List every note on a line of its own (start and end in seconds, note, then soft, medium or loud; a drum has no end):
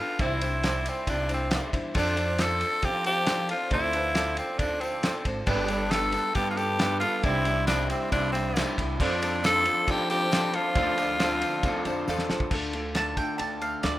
0.00 0.18 D4 medium
0.00 0.21 D4 soft
0.00 0.22 F4 medium
0.00 0.18 G4 medium
0.00 0.21 G4 medium
0.00 0.18 A4 medium
0.00 0.21 A4 medium
0.00 0.18 B4 medium
0.00 0.18 A5 medium
0.19 0.86 C2 loud
0.19 0.43 C3 medium
0.19 0.42 E3 medium
0.19 0.42 G3 medium
0.19 0.40 D4 medium
0.19 0.42 D4 medium
0.19 0.40 E4 medium
0.19 1.94 E4 medium
0.19 0.90 E4 medium
0.19 0.41 E4 medium
0.19 0.41 G4 medium
0.19 0.41 C5 loud
0.19 0.40 C5 medium
0.19 1.93 D5 medium
0.19 1.94 C6 medium
0.19 kick loud
0.19 ride loud
0.41 0.62 G3 soft
0.41 0.63 D4 medium
0.41 0.62 D4 soft
0.41 0.63 E4 medium
0.41 0.63 G4 medium
0.41 0.64 C5 medium
0.41 ride medium
0.41 tambourine medium
0.63 1.29 G3 medium
0.63 1.29 D4 medium
0.63 1.05 D4 medium
0.63 1.28 E4 medium
0.63 1.06 E4 medium
0.63 1.06 G4 medium
0.63 1.28 C5 medium
0.63 1.07 C5 medium
0.63 snare loud
0.63 ride loud
0.63 tambourine medium
0.85 1.09 C4 medium
0.85 ride medium
0.85 tambourine medium
1.06 1.58 C2 medium
1.06 1.49 D4 medium
1.06 1.29 D4 medium
1.06 1.49 E4 medium
1.06 1.50 G4 medium
1.06 1.50 C5 medium
1.06 kick medium
1.06 ride loud
1.06 tambourine medium
1.28 1.49 G3 soft
1.28 1.50 D4 soft
1.28 1.50 E4 medium
1.28 1.51 C5 medium
1.28 ride medium
1.28 tambourine medium
1.34 1.73 C4 medium
1.50 1.73 G3 medium
1.50 1.93 D4 medium
1.50 1.72 D4 medium
1.50 1.93 E4 medium
1.50 1.72 E4 medium
1.50 1.93 G4 medium
1.50 1.71 C5 medium
1.50 1.94 C5 medium
1.50 snare loud
1.50 ride loud
1.50 tambourine medium
1.72 1.90 E2 medium
1.72 1.94 G3 soft
1.72 1.95 D4 soft
1.72 1.95 E4 medium
1.72 1.94 C5 soft
1.72 kick medium
1.72 ride medium
1.72 tambourine soft
1.94 2.62 F2 loud
1.94 2.17 D3 medium
1.94 2.17 F3 medium
1.94 5.44 F3 medium
1.94 2.16 C4 medium
1.94 2.16 D4 loud
1.94 2.15 F4 medium
1.94 2.17 F4 medium
1.94 2.14 A4 medium
1.94 2.17 A4 medium
1.94 2.15 C5 medium
1.94 2.17 C5 loud
1.94 5.44 D5 medium
1.94 3.69 A5 medium
1.94 kick loud
1.94 crash loud
1.99 2.43 D4 loud
2.15 2.37 C4 soft
2.15 2.38 D4 medium
2.15 2.37 F4 medium
2.15 2.38 F4 medium
2.15 2.39 A4 medium
2.15 2.38 A4 medium
2.15 2.38 C5 medium
2.15 ride medium
2.15 tambourine medium
2.19 2.39 C5 medium
2.38 3.05 C4 medium
2.38 2.81 D4 medium
2.38 3.04 F4 medium
2.38 2.81 F4 medium
2.38 2.81 A4 medium
2.38 3.05 A4 medium
2.38 2.86 A4 loud
2.38 3.04 C5 medium
2.38 2.82 C5 medium
2.38 snare loud
2.38 ride loud
2.38 tambourine loud
2.61 ride medium
2.61 tambourine medium
2.82 3.50 F3 loud
2.82 3.25 D4 medium
2.82 3.25 F4 medium
2.82 3.06 G4 loud
2.82 3.26 A4 medium
2.82 3.26 C5 medium
2.82 kick medium
2.82 ride loud
2.82 tambourine medium
3.04 3.26 C4 soft
3.04 3.27 F4 soft
3.04 3.47 G4 loud
3.04 3.27 A4 medium
3.04 3.28 C5 medium
3.04 ride medium
3.04 tambourine medium
3.26 3.50 C4 medium
3.26 3.69 D4 medium
3.26 3.69 F4 medium
3.26 3.50 F4 medium
3.26 3.70 A4 medium
3.26 3.49 A4 medium
3.26 3.70 C5 medium
3.26 3.50 C5 medium
3.26 snare loud
3.26 ride loud
3.26 tambourine loud
3.49 3.71 C4 soft
3.49 3.71 F4 medium
3.49 3.72 F4 soft
3.49 3.72 A4 medium
3.49 3.73 C5 medium
3.49 ride medium
3.49 tambourine soft
3.70 4.38 D2 loud
3.70 3.94 D3 medium
3.70 3.94 C4 medium
3.70 3.92 D4 loud
3.70 4.35 E4 loud
3.70 3.93 F4 medium
3.70 3.95 F4 medium
3.70 3.93 A4 medium
3.70 3.93 C5 loud
3.70 3.94 C5 medium
3.70 5.45 C6 medium
3.70 kick loud
3.70 ride medium
3.93 4.14 D4 medium
3.93 4.15 F4 medium
3.93 4.14 F4 soft
3.93 4.16 A4 medium
3.93 4.15 A4 medium
3.93 4.16 B4 medium
3.93 4.15 C5 medium
3.93 ride medium
3.93 tambourine medium
4.15 4.81 C4 medium
4.15 4.57 D4 medium
4.15 4.82 F4 medium
4.15 4.58 F4 medium
4.15 4.80 A4 medium
4.15 4.58 A4 medium
4.15 4.81 C5 medium
4.15 4.59 C5 medium
4.15 snare loud
4.15 ride loud
4.15 tambourine loud
4.37 4.60 C4 medium
4.37 ride medium
4.37 tambourine medium
4.58 5.09 D2 medium
4.58 4.82 D4 medium
4.58 5.01 D4 medium
4.58 5.01 F4 medium
4.58 5.02 A4 medium
4.58 5.02 C5 medium
4.58 kick medium
4.58 ride loud
4.58 tambourine medium
4.80 5.25 C4 medium
4.80 5.02 F4 soft
4.80 5.03 A4 medium
4.80 5.03 C5 soft
4.80 ride medium
4.80 tambourine medium
5.02 5.25 C4 medium
5.02 5.46 D4 medium
5.02 5.26 F4 medium
5.02 5.46 F4 medium
5.02 5.24 A4 medium
5.02 5.46 A4 medium
5.02 5.25 C5 medium
5.02 5.47 C5 medium
5.02 snare loud
5.02 ride loud
5.02 tambourine loud
5.25 5.42 G#1 medium
5.25 5.46 F4 soft
5.25 5.46 A4 medium
5.25 5.47 C5 medium
5.25 kick medium
5.25 ride medium
5.46 6.14 G1 loud
5.46 5.69 G3 medium
5.46 5.90 G3 medium
5.46 5.70 B3 medium
5.46 5.69 D4 medium
5.46 5.93 D4 medium
5.46 5.69 D4 medium
5.46 5.70 D4 loud
5.46 7.21 G4 medium
5.46 5.69 G4 medium
5.46 5.67 A4 medium
5.46 5.69 A4 medium
5.46 5.68 A4 medium
5.46 5.69 B4 medium
5.46 7.22 B4 medium
5.46 7.21 A5 medium
5.46 kick loud
5.46 crash loud
5.50 5.70 B4 loud
5.68 5.91 B3 medium
5.68 5.92 D4 medium
5.68 5.91 D4 medium
5.68 5.91 G4 soft
5.68 5.92 G4 medium
5.68 5.91 A4 medium
5.68 5.92 A4 medium
5.68 5.92 B4 medium
5.68 5.92 D5 medium
5.68 ride medium
5.68 tambourine medium
5.91 6.34 G3 medium
5.91 6.14 B3 medium
5.91 6.78 D4 medium
5.91 6.34 D4 medium
5.91 6.14 D4 loud
5.91 6.58 G4 medium
5.91 6.34 G4 medium
5.91 6.34 A4 loud
5.91 6.12 A4 loud
5.91 6.56 A4 medium
5.91 6.34 A4 medium
5.91 6.57 B4 medium
5.91 6.35 B4 medium
5.91 snare loud
5.91 ride medium
5.91 tambourine loud
6.12 6.34 B3 medium
6.12 6.35 D4 medium
6.12 6.35 A4 medium
6.12 ride medium
6.12 tambourine medium
6.34 7.02 G2 medium
6.34 6.78 G3 medium
6.34 6.58 B3 loud
6.34 6.58 D4 medium
6.34 6.77 D4 medium
6.34 6.49 G4 loud
6.34 6.78 G4 medium
6.34 6.55 A4 medium
6.34 6.78 A4 medium
6.34 6.78 B4 medium
6.34 kick medium
6.34 ride medium
6.34 tambourine medium
6.50 6.59 F4 medium
6.57 6.80 B3 medium
6.57 6.81 D4 medium
6.57 6.99 G4 loud
6.57 6.78 G4 soft
6.57 6.80 A4 medium
6.57 6.79 A4 medium
6.57 6.79 B4 soft
6.57 ride medium
6.57 tambourine medium
6.79 7.22 G3 medium
6.79 7.04 B3 medium
6.79 7.01 D4 medium
6.79 7.21 D4 medium
6.79 7.03 D4 medium
6.79 7.02 G4 medium
6.79 7.22 G4 medium
6.79 7.00 A4 medium
6.79 7.22 A4 medium
6.79 7.02 A4 medium
6.79 7.02 B4 medium
6.79 7.22 B4 medium
6.79 snare loud
6.79 ride loud
6.79 tambourine loud
7.00 7.25 D4 medium
7.00 7.25 F4 medium
7.00 7.23 G4 soft
7.00 7.24 A4 medium
7.00 7.23 A4 medium
7.00 7.24 B4 soft
7.00 ride medium
7.00 tambourine soft
7.05 7.24 B3 medium
7.23 7.90 C2 loud
7.23 7.66 C3 medium
7.23 7.67 G3 medium
7.23 7.46 C4 medium
7.23 7.48 C4 loud
7.23 7.44 D4 loud
7.23 7.47 D4 loud
7.23 8.97 E4 medium
7.23 7.67 E4 loud
7.23 7.45 E4 medium
7.23 7.46 E4 medium
7.23 7.45 G4 medium
7.23 7.46 G4 medium
7.23 7.45 C5 loud
7.23 12.48 D5 medium
7.23 7.45 D5 medium
7.23 8.98 C6 medium
7.23 kick loud
7.23 ride medium
7.27 7.45 E4 loud
7.45 7.68 C4 medium
7.45 7.65 D4 medium
7.45 7.69 D4 medium
7.45 7.68 E4 medium
7.45 7.67 E4 medium
7.45 7.66 E4 medium
7.45 7.66 G4 medium
7.45 7.67 G4 soft
7.45 7.67 C5 medium
7.45 7.68 D5 medium
7.45 ride medium
7.45 tambourine medium
7.67 8.10 C3 medium
7.67 8.11 G3 loud
7.67 8.37 C4 medium
7.67 7.91 C4 loud
7.67 8.09 D4 medium
7.67 7.88 D4 medium
7.67 7.90 D4 loud
7.67 8.09 E4 medium
7.67 8.34 E4 medium
7.67 7.87 E4 loud
7.67 8.09 G4 medium
7.67 8.34 G4 medium
7.67 8.10 C5 medium
7.67 8.33 D5 medium
7.67 snare loud
7.67 ride loud
7.67 tambourine loud
7.88 8.10 C4 medium
7.88 8.12 C4 medium
7.88 8.13 D4 medium
7.88 8.12 E4 medium
7.88 ride medium
7.88 tambourine medium
8.11 8.62 C2 loud
8.11 8.55 C3 medium
8.11 8.55 G3 medium
8.11 8.35 C4 medium
8.11 8.53 D4 medium
8.11 8.32 D4 medium
8.11 8.35 D4 loud
8.11 8.53 E4 medium
8.11 8.33 E4 loud
8.11 8.53 G4 medium
8.11 8.53 C5 medium
8.11 kick medium
8.11 ride loud
8.11 tambourine medium
8.32 8.74 C4 medium
8.32 8.56 C4 medium
8.32 8.57 D4 medium
8.32 8.57 E4 medium
8.32 8.56 E4 medium
8.32 8.56 G4 soft
8.32 8.56 D5 medium
8.32 ride medium
8.32 tambourine medium
8.56 8.98 G3 medium
8.56 8.78 C4 medium
8.56 8.80 C4 medium
8.56 8.97 D4 medium
8.56 8.78 D4 medium
8.56 8.97 E4 medium
8.56 8.79 E4 medium
8.56 8.77 E4 medium
8.56 8.98 G4 medium
8.56 8.78 G4 medium
8.56 8.98 C5 medium
8.56 8.78 D5 medium
8.56 snare loud
8.56 ride loud
8.56 tambourine loud
8.78 8.95 C2 medium
8.78 9.00 C4 medium
8.78 9.00 D4 medium
8.78 8.98 E4 medium
8.78 9.01 E4 soft
8.78 9.01 G4 soft
8.78 9.01 D5 medium
8.78 kick medium
8.78 ride medium
8.78 tambourine soft
8.99 9.67 F2 loud
8.99 9.22 D3 medium
8.99 9.42 F3 medium
8.99 9.22 F3 medium
8.99 9.23 C4 medium
8.99 9.22 C4 medium
8.99 9.21 D4 loud
8.99 9.41 D4 medium
8.99 9.21 F4 loud
8.99 12.49 F4 medium
8.99 9.23 F4 medium
8.99 9.21 A4 loud
8.99 9.21 A4 medium
8.99 9.22 A4 medium
8.99 9.22 C5 medium
8.99 9.21 C5 loud
8.99 10.74 A5 medium
8.99 kick loud
8.99 crash loud
9.21 9.44 C4 medium
9.21 9.44 C4 soft
9.21 9.44 D4 medium
9.21 9.42 D4 medium
9.21 9.43 F4 medium
9.21 9.44 F4 medium
9.21 9.45 A4 medium
9.21 9.44 A4 medium
9.21 9.43 A4 medium
9.21 9.44 C5 medium
9.21 9.43 C5 medium
9.21 ride medium
9.21 tambourine medium
9.43 9.87 F3 loud
9.43 9.67 C4 medium
9.43 10.10 C4 medium
9.43 9.85 D4 medium
9.43 9.67 D4 loud
9.43 9.86 F4 medium
9.43 10.12 F4 medium
9.43 9.65 A4 loud
9.43 9.86 A4 medium
9.43 9.92 A4 loud
9.43 9.86 C5 medium
9.43 10.10 C5 medium
9.43 snare loud
9.43 ride loud
9.43 tambourine loud
9.47 10.10 A4 medium
9.65 9.87 C4 medium
9.65 9.89 D4 medium
9.65 9.89 A4 medium
9.65 ride medium
9.65 tambourine medium
9.87 10.30 F3 medium
9.87 10.54 F3 medium
9.87 10.10 C4 loud
9.87 10.29 D4 medium
9.87 10.10 D4 medium
9.87 10.29 F4 medium
9.87 10.29 A4 medium
9.87 10.09 A4 loud
9.87 10.30 D5 medium
9.87 kick medium
9.87 ride loud
9.87 tambourine medium
9.91 10.10 G4 loud
10.09 10.30 C4 medium
10.09 10.31 C4 soft
10.09 10.31 D4 medium
10.09 10.32 F4 medium
10.09 10.57 G4 loud
10.09 10.33 A4 medium
10.09 10.32 A4 medium
10.09 10.32 C5 medium
10.09 ride medium
10.09 tambourine medium
10.30 10.75 F3 medium
10.30 10.54 C4 medium
10.30 10.73 D4 medium
10.30 10.53 D4 medium
10.30 10.73 F4 medium
10.30 10.54 F4 medium
10.30 10.73 A4 medium
10.30 10.52 A4 medium
10.30 10.74 C5 medium
10.30 10.53 C5 medium
10.30 snare loud
10.30 ride loud
10.30 tambourine loud
10.34 10.53 A4 medium
10.53 10.74 C4 medium
10.53 10.76 C4 soft
10.53 10.75 D4 medium
10.53 12.30 F4 loud
10.53 10.76 F4 soft
10.53 10.76 A4 medium
10.53 10.76 C5 soft
10.53 ride medium
10.53 tambourine soft
10.74 11.42 D2 loud
10.74 11.17 D3 medium
10.74 11.17 F3 loud
10.74 10.97 C4 loud
10.74 10.99 C4 medium
10.74 10.95 D4 loud
10.74 10.96 D4 loud
10.74 10.96 F4 loud
10.74 10.98 F4 medium
10.74 10.96 A4 loud
10.74 10.95 A4 loud
10.74 10.97 C5 loud
10.74 12.50 C6 medium
10.74 kick loud
10.74 ride loud
10.74 tambourine soft
10.78 10.99 D3 medium
10.78 10.97 A4 medium
10.78 10.98 C5 medium
10.96 11.17 C4 medium
10.96 11.18 D4 medium
10.96 11.18 F4 medium
10.96 11.19 A4 medium
10.96 11.20 A4 medium
10.96 11.21 C5 medium
10.96 11.19 D5 medium
10.96 ride medium
10.96 tambourine medium
11.01 11.20 F4 medium
11.18 11.62 D3 loud
11.18 11.63 F3 loud
11.18 11.42 C4 loud
11.18 11.86 C4 medium
11.18 11.41 D4 loud
11.18 11.61 D4 medium
11.18 11.61 F4 medium
11.18 11.86 F4 medium
11.18 11.40 A4 loud
11.18 11.62 A4 medium
11.18 11.62 C5 loud
11.18 snare loud
11.18 ride loud
11.18 tambourine medium
11.22 11.85 A4 medium
11.22 11.85 C5 medium
11.41 11.64 C4 medium
11.41 11.64 D4 medium
11.41 11.65 A4 medium
11.41 ride medium
11.41 tambourine medium
11.63 11.80 D2 medium
11.63 12.07 D3 medium
11.63 12.06 F3 medium
11.63 11.87 C4 medium
11.63 12.05 D4 medium
11.63 11.86 D4 medium
11.63 12.05 F4 medium
11.63 12.05 A4 medium
11.63 11.84 A4 loud
11.63 12.06 C5 loud
11.63 kick medium
11.63 ride loud
11.63 tambourine medium
11.85 12.05 F2 medium
11.85 12.07 C4 medium
11.85 12.08 D4 medium
11.85 12.08 F4 medium
11.85 12.08 A4 medium
11.85 12.08 C5 medium
11.85 12.06 D5 medium
11.85 ride medium
11.85 tambourine medium
12.07 12.28 E2 medium
12.07 12.50 F3 medium
12.07 12.30 C4 medium
12.07 12.31 C4 medium
12.07 12.49 D4 medium
12.07 12.29 D4 medium
12.07 12.50 F4 medium
12.07 12.30 F4 medium
12.07 12.50 A4 medium
12.07 12.28 A4 medium
12.07 12.29 A4 medium
12.07 12.30 C5 medium
12.07 12.50 C5 medium
12.07 12.29 F5 medium
12.07 snare medium
12.07 tambourine loud
12.19 snare medium
12.29 12.50 D2 medium
12.29 12.51 C4 medium
12.29 12.51 D4 medium
12.29 12.53 F4 soft
12.29 12.50 A4 medium
12.29 12.52 A4 medium
12.29 12.52 C5 medium
12.29 12.51 A5 medium
12.29 snare loud
12.40 kick loud
12.51 13.18 D2 medium
12.51 12.74 D3 medium
12.51 12.95 D3 medium
12.51 12.74 A3 medium
12.51 12.74 D4 medium
12.51 13.99 F4 medium
12.51 12.74 F4 medium
12.51 12.73 A4 medium
12.51 13.99 D5 medium
12.51 13.99 A5 medium
12.51 kick loud
12.51 crash loud
12.51 tambourine soft
12.62 tambourine soft
12.73 13.19 A3 medium
12.73 12.95 D4 soft
12.73 12.96 F4 medium
12.73 12.96 A4 medium
12.73 ride medium
12.73 tambourine soft
12.95 13.99 D3 medium
12.95 13.18 A3 medium
12.95 13.18 D4 medium
12.95 13.17 F4 medium
12.95 13.16 A4 medium
12.95 13.17 A5 medium
12.95 snare loud
12.95 ride medium
12.95 tambourine medium
13.17 13.62 A3 medium
13.17 13.82 D4 soft
13.17 13.82 F4 medium
13.17 13.84 A4 medium
13.17 13.38 G5 medium
13.17 kick medium
13.17 ride medium
13.17 tambourine medium
13.38 13.73 D2 medium
13.38 13.83 D4 medium
13.38 13.60 A5 medium
13.38 ride medium
13.38 tambourine medium
13.61 13.99 A3 medium
13.61 13.83 F5 medium
13.61 ride medium
13.61 tambourine medium
13.72 tambourine soft
13.83 13.99 D2 medium
13.83 13.99 A3 medium
13.83 13.99 D4 medium
13.83 13.99 F4 medium
13.83 13.99 A4 medium
13.83 13.99 D5 medium
13.83 snare loud
13.83 ride medium
13.83 tambourine medium